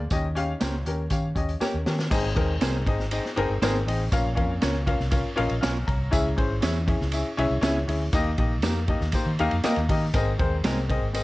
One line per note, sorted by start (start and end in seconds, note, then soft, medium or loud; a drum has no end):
0.10 0.53 D#2 loud
0.10 0.82 D#3 medium
0.10 0.26 C#4 medium
0.10 0.26 G4 medium
0.10 0.26 D#5 loud
0.10 kick loud
0.10 closed hi-hat medium
0.10 tambourine medium
0.35 0.50 C#4 loud
0.35 0.51 G4 medium
0.35 0.51 F5 loud
0.35 closed hi-hat medium
0.60 0.82 C#2 loud
0.60 0.75 A#3 medium
0.60 0.75 C#4 medium
0.60 0.76 G4 medium
0.60 0.75 G4 medium
0.60 0.76 A#4 medium
0.60 0.76 C5 medium
0.60 snare loud
0.60 closed hi-hat medium
0.60 tambourine medium
0.86 1.07 D#2 medium
0.86 1.01 C#4 medium
0.86 1.02 G4 medium
0.86 1.02 A#4 medium
0.86 closed hi-hat medium
1.10 1.32 D#3 medium
1.10 1.26 C#4 medium
1.10 1.26 G4 medium
1.10 1.27 F5 medium
1.10 kick medium
1.10 closed hi-hat loud
1.10 tambourine medium
1.35 1.57 D#2 medium
1.35 1.51 C#4 medium
1.35 1.51 G4 medium
1.35 1.52 D#5 medium
1.35 kick medium
1.35 closed hi-hat medium
1.49 closed hi-hat medium
1.60 1.76 A#3 medium
1.60 1.76 C#4 loud
1.60 1.76 C#4 medium
1.60 1.76 G4 loud
1.60 1.76 G4 medium
1.60 1.77 A#4 loud
1.60 1.76 A#4 medium
1.60 muted fingered electric bass stroke soft
1.60 snare soft
1.60 tambourine medium
1.74 1.84 D#2 medium
1.86 2.07 D#3 medium
1.86 2.01 C#4 medium
1.86 2.02 G4 medium
1.86 2.02 A#4 medium
1.86 snare medium
1.99 snare medium
2.10 2.32 G#1 loud
2.10 2.82 G#2 medium
2.10 2.26 C4 loud
2.10 2.26 D#4 medium
2.10 2.26 G#4 loud
2.10 2.27 D#5 loud
2.10 kick loud
2.10 crash loud
2.10 tambourine medium
2.35 2.58 D#2 medium
2.35 2.51 C4 medium
2.35 2.51 D#4 medium
2.35 2.51 G#4 medium
2.35 2.52 A#4 loud
2.35 kick loud
2.35 ride medium
2.61 2.83 C2 loud
2.61 2.76 C4 medium
2.61 2.76 D#4 medium
2.61 2.77 G#4 medium
2.61 2.76 G#4 medium
2.61 2.77 A#4 medium
2.61 2.76 C5 medium
2.61 snare loud
2.61 ride medium
2.61 tambourine medium
2.86 3.18 G#1 medium
2.86 3.02 C4 medium
2.86 3.02 D#4 medium
2.86 3.02 G#4 medium
2.86 3.02 D#5 medium
2.86 kick loud
2.86 ride medium
3.00 snare soft
3.11 3.27 C4 medium
3.11 3.27 D#4 medium
3.11 3.27 G#4 medium
3.11 3.27 D#5 medium
3.11 ride loud
3.11 tambourine medium
3.25 snare soft
3.36 3.48 G1 medium
3.36 3.52 C4 loud
3.36 3.52 D#4 loud
3.36 3.52 G#4 loud
3.36 3.52 A#4 loud
3.36 ride medium
3.49 3.60 G1 medium
3.62 3.83 G#1 loud
3.62 3.77 C4 loud
3.62 3.76 C4 medium
3.62 3.77 D#4 medium
3.62 3.77 G#4 medium
3.62 3.77 G#4 loud
3.62 3.78 A#4 loud
3.62 3.77 C5 medium
3.62 snare loud
3.62 ride medium
3.62 tambourine medium
3.87 4.08 A1 loud
3.87 4.02 C4 medium
3.87 4.02 D#4 medium
3.87 4.02 G#4 medium
3.87 4.02 D#5 medium
3.87 open hi-hat medium
3.87 ride medium
4.12 4.39 A#1 loud
4.12 4.83 A#2 medium
4.12 4.27 C#4 loud
4.12 4.27 F4 medium
4.12 4.28 A#4 medium
4.12 4.28 F5 loud
4.12 kick loud
4.12 hi-hat pedal medium
4.12 ride medium
4.12 tambourine medium
4.35 4.58 F2 loud
4.35 4.51 C#4 medium
4.35 4.52 F4 medium
4.35 4.52 A#4 medium
4.35 4.52 F5 loud
4.35 kick loud
4.35 ride medium
4.61 4.94 C#2 loud
4.61 4.77 C#4 medium
4.61 4.76 C#4 medium
4.61 4.77 F4 medium
4.61 4.76 F4 medium
4.61 4.77 A#4 medium
4.61 4.77 A#4 loud
4.61 4.77 C#5 medium
4.61 4.77 C#5 loud
4.61 snare loud
4.61 ride medium
4.61 tambourine medium
4.86 5.02 C#4 medium
4.86 5.02 F4 medium
4.86 5.02 A#4 medium
4.86 5.02 F5 loud
4.86 kick medium
4.86 ride medium
5.00 5.21 C2 medium
5.00 snare soft
5.11 5.27 C#4 medium
5.11 5.27 F4 medium
5.11 5.27 A#4 medium
5.11 5.28 F5 medium
5.11 kick loud
5.11 ride medium
5.11 tambourine medium
5.36 5.49 A#1 loud
5.36 5.52 C#4 loud
5.36 5.52 F4 loud
5.36 5.52 A#4 loud
5.36 5.60 D#5 medium
5.36 5.52 F5 loud
5.36 ride medium
5.49 5.61 A#1 medium
5.49 ride soft
5.61 5.84 B1 medium
5.61 5.77 C#4 medium
5.61 5.77 F4 loud
5.61 5.77 A#4 medium
5.61 5.77 C#5 medium
5.61 5.85 F5 medium
5.61 5.86 G#5 medium
5.61 5.86 F6 medium
5.61 snare loud
5.61 ride medium
5.61 tambourine medium
5.87 6.09 C2 loud
5.87 6.35 C#5 medium
5.87 6.35 A#5 medium
5.87 kick loud
5.87 ride medium
6.11 6.34 C#2 loud
6.11 6.83 C#3 medium
6.11 6.27 C#4 loud
6.11 6.27 E4 medium
6.11 6.27 G#4 loud
6.11 6.28 E5 loud
6.11 kick loud
6.11 ride medium
6.11 tambourine medium
6.36 6.59 G#1 medium
6.36 6.52 C#4 medium
6.36 6.52 E4 medium
6.36 6.53 G#4 medium
6.36 6.53 C5 medium
6.36 kick loud
6.36 ride medium
6.61 6.94 E2 loud
6.61 6.77 C#4 medium
6.61 6.77 E4 medium
6.61 6.77 E4 loud
6.61 6.78 G#4 medium
6.61 6.78 C#5 medium
6.61 6.78 E5 medium
6.61 snare loud
6.61 ride medium
6.61 tambourine medium
6.87 7.02 C#4 medium
6.87 7.03 E4 medium
6.87 7.03 G#4 medium
6.87 7.03 E5 medium
6.87 kick loud
6.87 ride medium
7.01 7.22 C#2 medium
7.01 snare soft
7.12 7.28 C#4 medium
7.12 7.28 E4 medium
7.12 7.28 G#4 medium
7.12 7.28 E5 medium
7.12 ride medium
7.12 tambourine medium
7.37 7.49 C2 medium
7.37 7.53 C#4 loud
7.37 7.53 E4 loud
7.37 7.53 G#4 loud
7.37 7.54 E5 loud
7.37 ride medium
7.50 7.61 C2 medium
7.61 7.77 C#4 loud
7.61 7.78 C#4 medium
7.61 7.78 E4 loud
7.61 7.78 G#4 medium
7.61 7.78 C#5 medium
7.61 7.78 E5 loud
7.61 snare loud
7.61 ride medium
7.61 tambourine medium
7.88 8.09 D2 loud
7.88 8.03 C#4 medium
7.88 8.03 E4 medium
7.88 8.03 G#4 medium
7.88 8.04 E5 medium
7.88 open hi-hat soft
7.88 ride medium
8.13 8.34 D#2 loud
8.13 8.85 D#3 medium
8.13 8.28 A#3 loud
8.13 8.29 D#4 loud
8.13 8.29 G4 loud
8.13 8.29 D#5 loud
8.13 kick loud
8.13 hi-hat pedal medium
8.13 ride medium
8.13 tambourine medium
8.38 8.64 A#1 medium
8.38 8.53 A#3 medium
8.38 8.53 D#4 medium
8.38 8.53 G4 medium
8.38 8.54 D#5 loud
8.38 kick medium
8.38 ride medium
8.62 8.95 F2 medium
8.62 8.78 A#3 medium
8.62 8.78 D#4 medium
8.62 8.79 D#4 medium
8.62 8.79 G4 medium
8.62 8.78 G4 medium
8.62 8.79 A#4 medium
8.62 8.78 A#4 medium
8.62 snare loud
8.62 ride medium
8.62 tambourine loud
8.88 9.03 A#3 medium
8.88 9.04 D#4 medium
8.88 9.04 G4 medium
8.88 9.04 D#5 medium
8.88 kick medium
8.88 ride medium
9.01 9.12 D#2 medium
9.01 snare soft
9.12 9.28 A#3 medium
9.12 9.29 D#4 medium
9.12 9.29 G4 medium
9.12 9.29 C5 medium
9.12 kick loud
9.12 ride medium
9.12 tambourine medium
9.26 9.37 D#3 loud
9.39 9.50 D#2 loud
9.39 9.54 A#3 loud
9.39 9.54 D#4 loud
9.39 9.54 G4 loud
9.39 9.54 F5 loud
9.39 ride medium
9.51 9.62 F2 medium
9.51 ride soft
9.63 9.79 A#3 loud
9.63 9.78 A#3 medium
9.63 9.78 D#4 medium
9.63 9.79 D#4 medium
9.63 9.79 G4 medium
9.63 9.79 A#4 medium
9.63 9.80 D#5 loud
9.63 muted fingered electric bass stroke soft
9.63 snare loud
9.63 ride medium
9.63 tambourine medium
9.76 9.87 D#2 medium
9.76 ride soft
9.89 10.10 D#3 loud
9.89 10.04 A#3 medium
9.89 10.04 D#4 medium
9.89 10.04 G4 medium
9.89 10.05 D#5 medium
9.89 kick medium
9.89 open hi-hat medium
9.89 ride medium
10.14 10.35 G#1 loud
10.14 10.85 G#2 medium
10.14 10.29 C4 loud
10.14 10.29 G#4 loud
10.14 10.29 A#4 loud
10.14 10.30 D#5 loud
10.14 kick loud
10.14 hi-hat pedal medium
10.14 ride medium
10.14 tambourine medium
10.39 10.60 D#2 medium
10.39 10.54 C4 medium
10.39 10.54 G#4 medium
10.39 10.55 A#4 medium
10.39 10.55 C5 medium
10.39 kick loud
10.39 ride medium
10.64 10.96 C2 loud
10.64 10.78 G#3 medium
10.64 10.79 C4 medium
10.64 10.79 D#4 medium
10.64 10.79 G#4 medium
10.64 10.79 A#4 loud
10.64 10.80 A#4 medium
10.64 10.80 D#5 medium
10.64 snare loud
10.64 ride medium
10.64 tambourine medium
10.89 11.04 C4 medium
10.89 11.04 G#4 medium
10.89 11.04 A#4 medium
10.89 11.05 D#5 loud
10.89 kick loud
10.89 ride medium
11.01 11.23 G#1 medium
11.13 11.23 C4 medium
11.13 11.23 G#4 medium
11.13 11.23 A#4 medium
11.13 11.23 D#5 medium
11.13 ride medium
11.13 tambourine medium